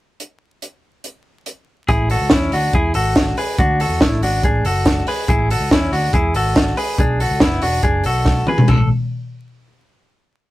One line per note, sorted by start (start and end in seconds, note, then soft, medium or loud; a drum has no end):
0.20 closed hi-hat soft
0.62 closed hi-hat medium
1.04 closed hi-hat soft
1.46 closed hi-hat medium
1.88 2.16 A1 medium
1.88 2.11 E4 medium
1.88 2.10 G#4 medium
1.88 kick loud
1.88 closed hi-hat medium
2.10 2.32 F#4 medium
2.10 2.32 A4 medium
2.10 open hi-hat medium
2.20 2.30 C#2 medium
2.30 2.49 E2 medium
2.30 2.53 C#4 medium
2.30 2.53 E4 medium
2.30 kick loud
2.30 snare loud
2.30 closed hi-hat medium
2.52 2.71 D2 medium
2.52 2.75 D4 medium
2.52 2.74 F#4 medium
2.52 open hi-hat medium
2.73 2.92 E2 medium
2.73 2.96 E4 medium
2.73 2.95 G#4 medium
2.73 kick medium
2.73 closed hi-hat medium
2.94 3.31 G#1 medium
2.94 3.36 F#4 medium
2.94 3.35 A4 medium
2.94 open hi-hat medium
3.16 kick medium
3.16 snare loud
3.16 closed hi-hat medium
3.37 3.59 G#4 medium
3.37 3.59 B4 medium
3.37 open hi-hat medium
3.58 3.86 D2 loud
3.58 3.81 D4 medium
3.58 3.80 F#4 medium
3.58 kick loud
3.58 closed hi-hat medium
3.80 4.02 F#4 medium
3.80 4.02 A4 medium
3.80 open hi-hat medium
3.89 3.99 E2 medium
4.01 4.19 A1 medium
4.01 4.23 A3 medium
4.01 4.23 E4 medium
4.01 kick loud
4.01 snare loud
4.01 closed hi-hat medium
4.21 4.40 G#1 medium
4.21 4.44 D4 medium
4.21 4.44 F#4 medium
4.21 open hi-hat medium
4.43 4.61 A1 medium
4.43 4.66 D4 medium
4.43 4.65 G#4 medium
4.43 kick medium
4.43 closed hi-hat medium
4.63 5.00 F#1 medium
4.63 5.06 F#4 medium
4.63 5.05 A4 medium
4.63 open hi-hat medium
4.85 kick loud
4.85 snare medium
4.85 closed hi-hat medium
5.07 5.28 G#4 medium
5.07 5.29 B4 medium
5.07 open hi-hat medium
5.28 5.55 A1 medium
5.28 5.50 E4 medium
5.28 5.50 G#4 medium
5.28 kick loud
5.28 closed hi-hat medium
5.50 5.72 F#4 soft
5.50 5.72 A4 medium
5.50 open hi-hat medium
5.59 5.69 C#2 medium
5.71 5.89 E2 medium
5.71 5.93 C#4 medium
5.71 5.93 E4 medium
5.71 kick medium
5.71 snare loud
5.91 6.10 D2 medium
5.91 6.14 D4 soft
5.91 6.13 F#4 medium
5.91 open hi-hat medium
6.13 6.31 E2 medium
6.13 6.36 E4 medium
6.13 6.35 G#4 medium
6.13 kick loud
6.13 closed hi-hat medium
6.34 6.71 G#1 medium
6.34 6.76 F#4 medium
6.34 6.75 A4 medium
6.34 open hi-hat medium
6.56 kick loud
6.56 snare loud
6.56 closed hi-hat medium
6.77 6.98 G#4 medium
6.77 6.99 B4 medium
6.77 open hi-hat medium
6.98 7.25 B1 loud
6.98 7.21 D4 medium
6.98 7.20 G#4 medium
6.98 kick loud
6.98 closed hi-hat medium
7.20 7.42 F#4 medium
7.20 7.41 A4 medium
7.20 open hi-hat medium
7.30 7.39 C#2 medium
7.40 7.59 F#1 medium
7.40 7.62 B3 medium
7.40 7.63 E4 medium
7.40 kick loud
7.40 snare loud
7.40 closed hi-hat medium
7.61 7.80 E1 medium
7.61 7.83 D4 soft
7.61 7.83 F#4 medium
7.61 open hi-hat medium
7.83 8.01 F#1 medium
7.83 8.05 D4 medium
7.83 8.05 G#4 medium
7.83 kick medium
7.83 closed hi-hat medium
8.04 8.41 B1 medium
8.04 8.46 F#4 medium
8.04 8.45 A4 medium
8.04 open hi-hat medium
8.25 kick medium
8.25 snare soft
8.47 8.69 G#4 medium
8.47 8.68 B4 medium
8.47 mid tom medium
8.58 floor tom medium
8.68 8.88 A1 medium
8.68 8.88 A4 medium
8.68 kick medium
8.68 floor tom medium
8.68 china medium